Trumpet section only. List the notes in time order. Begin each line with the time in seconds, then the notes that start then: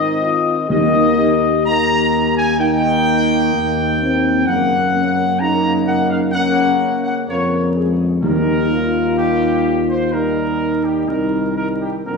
Already playing: D#5
0.70 D#5
1.65 A#5
2.37 G#5
2.59 G5
4.46 F#5
5.40 A#5
5.86 F#5
6.10 F5
6.32 F#5
7.05 F#5
7.28 C#5
8.22 A#4
9.17 G4
9.89 C5
10.12 A#4
10.84 G4
11.07 A#4
11.56 A#4
11.81 G4
12.05 A#4